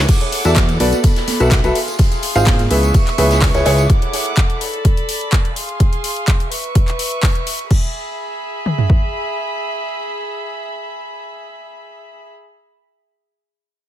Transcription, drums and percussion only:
0.08 kick, closed hi-hat, tambourine, crash
0.21 closed hi-hat, tambourine
0.32 closed hi-hat, open hi-hat
0.45 closed hi-hat, tambourine
0.56 kick, snare, clap, closed hi-hat, tambourine, high conga
0.68 closed hi-hat, tambourine
0.80 closed hi-hat, open hi-hat
0.92 closed hi-hat, tambourine, high conga
1.03 kick, closed hi-hat, tambourine
1.16 snare, closed hi-hat, tambourine
1.28 snare, closed hi-hat, open hi-hat, high conga
1.40 closed hi-hat, tambourine
1.51 kick, snare, clap, closed hi-hat, tambourine
1.64 closed hi-hat, tambourine
1.75 closed hi-hat, open hi-hat
1.88 closed hi-hat, tambourine
1.99 kick, closed hi-hat, tambourine
2.12 closed hi-hat, tambourine
2.22 closed hi-hat, open hi-hat
2.35 closed hi-hat, tambourine
2.46 kick, snare, clap, closed hi-hat, open hi-hat, tambourine, high conga
2.59 closed hi-hat, tambourine
2.70 closed hi-hat, open hi-hat
2.83 closed hi-hat, tambourine
2.94 kick, closed hi-hat, tambourine
3.07 clap, closed hi-hat, tambourine
3.18 closed hi-hat, open hi-hat, high conga
3.31 snare, closed hi-hat, tambourine
3.42 kick, snare, clap, closed hi-hat, open hi-hat, tambourine
3.54 snare, closed hi-hat, tambourine
3.65 snare, closed hi-hat, open hi-hat
3.78 closed hi-hat, tambourine
3.90 kick, closed hi-hat
4.02 closed hi-hat
4.13 open hi-hat
4.26 closed hi-hat
4.37 kick, clap, closed hi-hat
4.50 closed hi-hat
4.61 open hi-hat
4.74 closed hi-hat
4.85 kick, closed hi-hat
4.97 closed hi-hat
5.09 open hi-hat
5.21 closed hi-hat
5.33 kick, clap, closed hi-hat
5.45 closed hi-hat
5.56 open hi-hat
5.69 closed hi-hat
5.80 kick, closed hi-hat
5.93 closed hi-hat
6.04 open hi-hat
6.16 closed hi-hat
6.28 kick, clap, closed hi-hat
6.40 closed hi-hat
6.52 open hi-hat
6.64 closed hi-hat
6.75 kick, closed hi-hat
6.88 clap, closed hi-hat
6.99 open hi-hat
7.12 closed hi-hat
7.23 kick, clap, open hi-hat
7.35 closed hi-hat
7.47 open hi-hat
7.59 closed hi-hat
7.71 kick, crash
8.66 mid tom
8.78 floor tom
8.90 kick

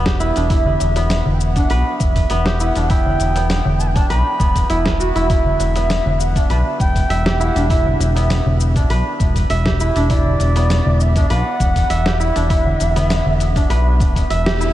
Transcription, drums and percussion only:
0.06 kick, snare
0.20 shaker
0.36 open hi-hat, shaker
0.50 kick, open hi-hat, shaker
0.66 darbuka dum
0.80 open hi-hat, darbuka tek, shaker
0.95 open hi-hat, darbuka ka, darbuka tek, shaker
1.10 snare, open hi-hat, shaker
1.26 darbuka dum
1.41 shaker
1.56 kick, open hi-hat, shaker
1.70 open hi-hat, shaker
1.86 darbuka ka
2.00 kick, open hi-hat, darbuka tek, shaker
2.16 kick, open hi-hat, shaker
2.30 open hi-hat, shaker
2.45 snare, darbuka tek
2.60 shaker
2.76 open hi-hat, shaker
2.90 kick, open hi-hat, shaker
3.06 darbuka dum
3.20 open hi-hat, darbuka tek, shaker
3.36 open hi-hat, darbuka ka, darbuka tek, shaker
3.50 snare, open hi-hat, shaker
3.65 darbuka dum
3.80 shaker
3.96 kick, open hi-hat, darbuka tek, shaker
4.10 open hi-hat, shaker
4.39 kick, open hi-hat, darbuka ka, shaker
4.56 kick, open hi-hat, shaker
4.70 open hi-hat, shaker
4.86 kick, snare
5.00 shaker
5.16 open hi-hat, shaker
5.30 kick, open hi-hat, shaker
5.46 darbuka dum
5.60 open hi-hat, darbuka tek, shaker
5.76 open hi-hat, darbuka ka, darbuka tek, shaker
5.90 snare, open hi-hat, shaker
6.06 darbuka dum
6.20 shaker
6.36 kick, open hi-hat, shaker
6.50 open hi-hat, shaker
6.67 darbuka ka
6.80 kick, open hi-hat, darbuka tek, shaker
6.96 kick, open hi-hat, shaker
7.10 open hi-hat, shaker
7.26 snare, darbuka tek
7.41 shaker
7.56 open hi-hat, shaker
7.70 kick, open hi-hat, shaker
7.85 darbuka dum
8.00 open hi-hat, darbuka tek, shaker
8.16 open hi-hat, darbuka ka, darbuka tek, shaker
8.30 snare, open hi-hat, shaker
8.46 darbuka dum
8.60 shaker
8.76 kick, open hi-hat, shaker
8.90 open hi-hat, shaker
9.20 kick, open hi-hat, darbuka ka, shaker
9.36 kick, open hi-hat, shaker
9.50 open hi-hat, shaker
9.66 kick, snare
9.80 shaker
9.96 open hi-hat, shaker
10.10 kick, open hi-hat, shaker
10.26 darbuka dum
10.40 open hi-hat, darbuka tek, shaker
10.56 open hi-hat, darbuka ka, darbuka tek, shaker
10.70 snare, open hi-hat, shaker
10.86 darbuka dum
11.00 shaker
11.16 kick, open hi-hat, shaker
11.30 open hi-hat, shaker
11.46 darbuka ka
11.60 kick, open hi-hat, darbuka tek, shaker
11.76 kick, open hi-hat, shaker
11.90 open hi-hat, shaker
12.06 snare, darbuka tek
12.21 shaker
12.36 open hi-hat, shaker
12.50 kick, open hi-hat, shaker
12.66 darbuka dum
12.80 open hi-hat, darbuka tek, shaker
12.96 open hi-hat, darbuka ka, darbuka tek, darbuka dum, shaker
13.10 snare, open hi-hat, shaker
13.26 darbuka dum
13.40 open hi-hat, shaker
13.56 kick, open hi-hat, darbuka tek, shaker
13.70 open hi-hat, shaker
14.00 kick, open hi-hat, darbuka ka, shaker
14.16 kick, open hi-hat, shaker
14.30 open hi-hat, shaker
14.46 snare
14.61 shaker

